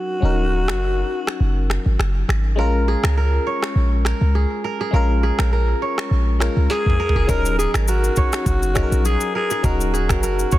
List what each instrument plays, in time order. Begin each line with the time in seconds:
Already playing: fm electric piano F#3 C#4 D#4 A#4, alto saxophone F#4
0.20 808-style bass D#1, fm electric piano F#3 C#4 D#4
0.25 fm electric piano A#4
0.68 808-style bass F#1, finger snap, cross-stick
1.27 finger snap, cross-stick
1.40 808-style bass F#1
1.70 finger snap, cross-stick
1.86 808-style bass G#1
1.99 808-style bass F#1, finger snap, cross-stick
2.29 808-style bass G#1, finger snap, cross-stick
2.56 808-style bass A#1, fm electric piano G#3 C#4 F4, kora A#4
2.61 fm electric piano A#4
2.88 kora G#4
3.04 808-style bass C#2, kora A#4, finger snap, cross-stick
3.17 kora A#4
3.47 kora C#5
3.63 finger snap, cross-stick
3.76 808-style bass A#1
4.05 kora A#4, finger snap, cross-stick
4.21 808-style bass C#2
4.35 kora G#4
4.64 kora A#4
4.81 kora G#4
4.91 808-style bass A#1, fm electric piano G#3 C#4 F4, kora A#4
4.96 fm electric piano A#4
5.23 kora G#4
5.39 808-style bass A#1, kora A#4, finger snap, cross-stick
5.53 kora A#4
5.82 kora C#5
5.98 finger snap, cross-stick
6.11 808-style bass A#1
6.39 fm electric piano G#3 C#4 F4 A#4, kora A#4, finger snap, cross-stick
6.57 808-style bass C#2
6.70 kora G#4, alto saxophone G#4, snare
6.86 808-style bass A#1, mid tom
7.00 kora A#4
7.09 floor tom
7.15 808-style bass F1, kora G#4
7.27 808-style bass D#1, fm electric piano F#3 C#4 D#4 A#4, kora A#4, alto saxophone A#4, kick, shaker
7.45 shaker
7.59 alto saxophone G#4, kora G#4, shaker
7.74 808-style bass G#1, kora A#4, finger snap, cross-stick, shaker
7.88 alto saxophone F#4, kora A#4, shaker
8.04 shaker
8.16 kora C#5, kick, shaker
8.33 finger snap, cross-stick, shaker
8.46 808-style bass F#1, alto saxophone F#4, kick, shaker
8.63 shaker
8.74 fm electric piano F#3 C#4 D#4 G#4, kora A#4, finger snap, kick, cross-stick, shaker
8.83 fm electric piano A#4
8.92 808-style bass A#1, shaker
9.05 kora G#4, alto saxophone G#4, shaker
9.21 shaker
9.35 alto saxophone G#4, kora A#4
9.50 kora G#4, shaker
9.63 808-style bass D#1, fm electric piano F#3 C#4 D#4 A#4, alto saxophone F#4, kora A#4, kick, shaker
9.81 shaker
9.94 kora G#4, shaker
10.09 808-style bass F#1, alto saxophone F#4, kora A#4, finger snap, kick, cross-stick, shaker
10.23 kora A#4, shaker
10.39 shaker
10.51 kora C#5, kick, shaker